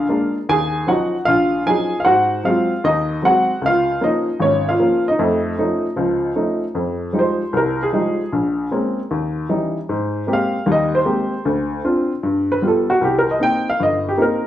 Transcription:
Already playing: F4 F5
0.09 G#3 A#3 D4
0.49 D#2 G#4 G#5
0.87 F3 F#3 C#4 D#4 F#4 F#5
1.25 A#1 F4 F5
1.66 F3 F#3 C#4 D#4 G#4 G#5
2.00 F5
2.05 G#2 F#4 F#5
2.44 F#3 G#3 C4 F4 F5
2.84 D#2 D#4 D#5
3.22 F#3 G#3 C4 F#5
3.27 F#4
3.62 C#2
3.66 F4 F5
4.01 F3 A#3 C#4 D#5
4.06 D#4
4.40 G#1 C#5
4.45 C#4
4.69 F4 F5
4.79 F3 A#3 C#4
5.08 D#4 D#5
5.19 F2 A3
5.58 F3 A3 C#4 D#4
5.96 C#2 F3
6.35 F3 A3 C#4 D#4
6.75 F2
7.13 F3 G3 G#3 D#4
7.19 C5
7.53 C2 A#4
7.83 G#4
7.93 F3 G3 G#3 D#4
8.32 A#1
8.71 G#3 A#3 C4 C#4
9.11 D#2
9.49 E3 G3 C#4 D#4
9.89 G#2
10.27 G#3 A#3 C4 G4
10.33 F5
10.66 D#2 G3
10.72 D#5
10.95 C5
11.05 G#3 A#3 C4 G4
11.45 D2
11.84 C4 D4 F4
12.23 G2
12.52 B4
12.62 G3 B3 F4
12.67 A4
12.90 F#4
13.01 C2 G4
13.19 A#4
13.31 D#5
13.40 A#3 C4 D#4 G5
13.70 F5
13.80 G1 D#5
14.09 G4
14.17 A#3 C4 D#4
14.22 A#4

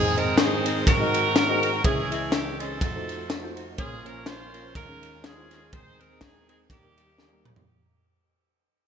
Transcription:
Already playing: G#2 D#3 G#3 C4 D#4 G#4
0.16 C4 D#4 G#4 A#4 C5 D#5, ride
0.38 D#4 G#4 C5, snare, ride
0.65 C4 D#4 G#4 C5 D#5, ride
0.86 G#2 D#4 F#4 A#4, kick, snare, ride
1.00 D#4 F#4 G#4 C5 D#5
1.14 ride
1.36 snare, ride
1.48 D#4 F#4 G#4 C5 D#5
1.63 ride
1.84 C#2 C#3 E3 C#4 E4 G#4 C#5 E5, kick, ride
2.11 C#4 E4 G#4 C#5 E5, ride
2.32 G4, snare, ride
2.60 C4 C#4 D#4 E4 G#4 A4 C#5 D#5, ride
2.81 F2 F3 A3 D#4 F#4, kick, snare, ride
2.95 D#4 F4 F#4 A4 C5
3.09 ride
3.30 snare, ride
3.43 D#4 F4 F#4 A4 C5
3.57 ride
3.78 A#1 A#2 A#3 C#4 F4 G#4 A#4 C#5, kick, ride
4.05 A#3 C#4 F4 A#4 C#5, ride
4.26 F4 C5, snare, ride
4.54 A#3 C#4 F4 A#4 C#5, ride
4.75 D#2 D#3 G#3 C#4 F4 A#4, kick, snare, ride
4.88 C#4 D#4 F4 G#4 A#4
5.03 ride
5.24 C#4 F4 G#4, snare, ride
5.37 C#4 D#4 F4 G#4 C5
5.51 snare, ride
5.72 D#2 D#3 G#3 C4 D#4 G#4 C5, kick, ride
5.99 G#3 C4 D#4 G#4 A#4 C5, ride
6.21 G#4, kick, snare, ride
6.48 G#3 C4 D#4 G#4 C5, ride
6.69 D#2 D#3 G3 A#3 D#4 G4, kick, snare, ride
6.83 G3 A#3 D#4 G4 A#4
6.98 ride
7.18 snare
7.32 G3 A#3 D#4 G4 A#4
7.45 mid tom
7.56 floor tom

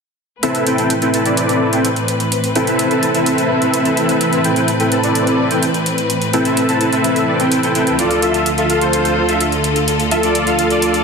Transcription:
0.43 A2 E3 C4 E4 A4 B4 E5, closed hi-hat
0.55 closed hi-hat
0.67 C4 E4 A4 B4 G5, closed hi-hat
0.78 C4 E4 A4 B4 G5, closed hi-hat
0.90 closed hi-hat
1.02 C4 E4 A4 B4 G5, closed hi-hat
1.14 C4 E4 A4 B4 A5, closed hi-hat
1.26 C4 E4 A4 B4 D5, closed hi-hat
1.37 closed hi-hat
1.49 closed hi-hat
1.73 C4 E4 A4 B4 G5, closed hi-hat
1.85 closed hi-hat
1.96 closed hi-hat
2.08 closed hi-hat
2.20 closed hi-hat
2.32 closed hi-hat
2.44 closed hi-hat
2.55 C4 E4 A4 B4 G5, closed hi-hat
2.67 C4 E4 A4 B4 E5, closed hi-hat
2.79 closed hi-hat
2.91 C4 E4 A4 B4 A5, closed hi-hat
3.03 C4 E4 A4 B4 A5, closed hi-hat
3.15 C4 E4 A4 B4 E5, closed hi-hat
3.26 closed hi-hat
3.38 closed hi-hat
3.62 closed hi-hat
3.74 closed hi-hat
3.85 closed hi-hat
3.97 closed hi-hat
4.09 closed hi-hat
4.21 C4 E4 A4 B4 E5, closed hi-hat
4.33 closed hi-hat
4.44 C4 E4 A4 B4 G5, closed hi-hat
4.56 C4 E4 A4 B4 G5, closed hi-hat
4.68 closed hi-hat
4.80 C4 E4 A4 B4 G5, closed hi-hat
4.92 C4 E4 A4 B4 A5, closed hi-hat
5.04 C4 E4 A4 B4 D5, closed hi-hat
5.15 closed hi-hat
5.27 closed hi-hat
5.51 C4 E4 A4 B4 G5, closed hi-hat
5.63 closed hi-hat
5.74 closed hi-hat
5.86 closed hi-hat
5.98 closed hi-hat
6.10 closed hi-hat
6.22 closed hi-hat
6.33 C4 E4 A4 B4 G5, closed hi-hat
6.45 C4 E4 A4 B4 E5, closed hi-hat
6.57 closed hi-hat
6.69 C4 E4 A4 B4 A5, closed hi-hat
6.81 C4 E4 A4 B4 A5, closed hi-hat
6.93 C4 E4 A4 B4 E5, closed hi-hat
7.04 closed hi-hat
7.16 closed hi-hat
7.28 C4 E4 A4 B4 D5
7.40 C4 E4 A4 B4 G5, closed hi-hat
7.52 closed hi-hat
7.63 C4 E4 A4 B4 G5, closed hi-hat
7.75 C4 E4 A4 B4 G5, closed hi-hat
7.87 closed hi-hat
7.99 D2 D3 F4 A4 D5, closed hi-hat
8.11 closed hi-hat
8.22 F4 A4 E5, closed hi-hat
8.34 F4 A4 E5, closed hi-hat
8.46 closed hi-hat
8.58 F4 A4 E5, closed hi-hat
8.70 F4 A4 F5, closed hi-hat
8.81 F4 A4 C5, closed hi-hat
8.93 closed hi-hat
9.05 closed hi-hat
9.29 F4 A4 E5, closed hi-hat
9.41 closed hi-hat
9.52 closed hi-hat
9.64 closed hi-hat
9.76 closed hi-hat
9.88 closed hi-hat
10.00 closed hi-hat
10.11 F4 A4 E5, closed hi-hat
10.23 F4 A4 D5, closed hi-hat
10.35 closed hi-hat
10.47 F4 A4 F5, closed hi-hat
10.59 F4 A4 F5, closed hi-hat
10.70 F4 A4 D5, closed hi-hat
10.82 closed hi-hat
10.94 closed hi-hat

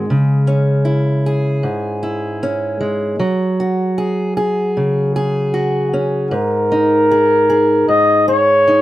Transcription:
Already playing: G#3
0.10 C#3
0.47 C#4
0.85 E4
1.26 G#4
1.63 G#2
2.03 E4
2.43 C#4
2.81 G#3
3.19 F#3
3.60 F#4
3.98 G#4
4.37 G#4
4.77 C#3
5.16 G#4
5.54 F#4
5.93 C#4
6.31 G#2 A#4
6.72 D#4
7.11 G#4
7.50 G#4
7.88 G#2 D#5
8.28 G#4 C#5
8.68 D#4

